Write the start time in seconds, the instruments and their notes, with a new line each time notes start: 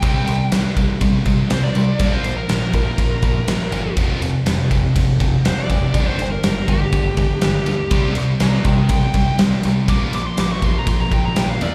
Already playing: lead electric guitar G5
0.02 picked electric bass C2, distorted electric guitar C3 G3 C4, kick, ride
0.27 picked electric bass C2, distorted electric guitar C3 G3, ride
0.52 picked electric bass C2, distorted electric guitar C3 G3, snare, ride
0.76 picked electric bass C2, distorted electric guitar C3 G3, kick, ride
1.01 picked electric bass C2, distorted electric guitar C3 G3, kick, ride
1.26 picked electric bass C2, distorted electric guitar C3 G3, kick, ride
1.50 picked electric bass C2, distorted electric guitar C3 G3, lead electric guitar C5, snare, ride
1.63 lead electric guitar D5
1.75 picked electric bass C2, distorted electric guitar C3 G3, ride
1.99 picked electric bass A#1, distorted electric guitar A#2 F3 A#3, kick, ride
2.12 lead electric guitar C5
2.24 picked electric bass A#1, distorted electric guitar A#2 F3, ride
2.37 lead electric guitar A#4
2.49 picked electric bass A#1, distorted electric guitar A#2 F3, snare, ride
2.73 picked electric bass A#1, distorted electric guitar A#2 F3, lead electric guitar A#4, kick, ride
2.98 picked electric bass A#1, distorted electric guitar A#2 F3, kick, ride
3.22 picked electric bass A#1, distorted electric guitar A#2 F3, kick, ride
3.48 picked electric bass A#1, distorted electric guitar A#2 F3, snare, ride
3.72 picked electric bass G1, distorted electric guitar A#2 F3, ride
3.97 picked electric bass F1, distorted electric guitar F2 C3 F3, kick, ride
4.22 picked electric bass F1, distorted electric guitar F2 C3, ride
4.46 picked electric bass F1, distorted electric guitar F2 C3, snare, ride
4.71 picked electric bass F1, distorted electric guitar F2 C3, kick, ride
4.96 picked electric bass F1, distorted electric guitar F2 C3, kick, ride
5.20 picked electric bass F1, distorted electric guitar F2 C3, kick, ride
5.45 picked electric bass F1, distorted electric guitar F2 C3, lead electric guitar C5, snare, ride
5.59 lead electric guitar D5
5.70 picked electric bass F1, distorted electric guitar F2 C3, kick, ride
5.94 picked electric bass G1, distorted electric guitar G2 D3 G3, kick, ride
6.06 lead electric guitar C5
6.19 picked electric bass G1, distorted electric guitar G2 D3, ride
6.32 lead electric guitar A#4
6.43 picked electric bass G1, distorted electric guitar G2 D3, snare, ride
6.68 picked electric bass G1, distorted electric guitar G2 D3, lead electric guitar G4, kick, ride
6.92 picked electric bass G1, distorted electric guitar G2 D3, kick, ride
7.17 picked electric bass G1, distorted electric guitar G2 D3, kick, ride
7.41 picked electric bass G1, distorted electric guitar G2 D3, snare, ride
7.66 picked electric bass D2, distorted electric guitar G2 D3, ride
7.91 picked electric bass C2, distorted electric guitar C3 G3 C4, kick, ride
8.15 picked electric bass C2, distorted electric guitar C3 G3, ride
8.40 picked electric bass C2, distorted electric guitar C3 G3, lead electric guitar D5 A#5, snare, ride
8.65 picked electric bass C2, distorted electric guitar C3 G3, lead electric guitar A#4 G5, kick, ride
8.89 picked electric bass C2, distorted electric guitar C3 G3, lead electric guitar G5, kick, ride
9.14 picked electric bass C2, distorted electric guitar C3 G3, kick, ride
9.39 picked electric bass C2, distorted electric guitar C3 G3, snare, ride
9.63 picked electric bass C2, distorted electric guitar C3 G3, ride
9.88 picked electric bass A#1, distorted electric guitar A#2 F3 A#3, lead electric guitar D6, kick, ride
10.13 picked electric bass A#1, distorted electric guitar A#2 F3, lead electric guitar D6, ride
10.27 lead electric guitar C6
10.37 picked electric bass A#1, distorted electric guitar A#2 F3, lead electric guitar D6, snare, ride
10.52 lead electric guitar C#6
10.62 picked electric bass A#1, distorted electric guitar A#2 F3, lead electric guitar C6, kick, ride
10.79 lead electric guitar A#5
10.87 picked electric bass A#1, distorted electric guitar A#2 F3, lead electric guitar C6, kick, ride
11.01 lead electric guitar A#5
11.12 picked electric bass A#1, distorted electric guitar A#2 F3, lead electric guitar G5, kick, ride
11.25 lead electric guitar A#5
11.36 picked electric bass A#1, distorted electric guitar A#2 F3, lead electric guitar G5, snare, ride
11.49 lead electric guitar F5
11.61 picked electric bass E2, distorted electric guitar A#2 F3, lead electric guitar D5, ride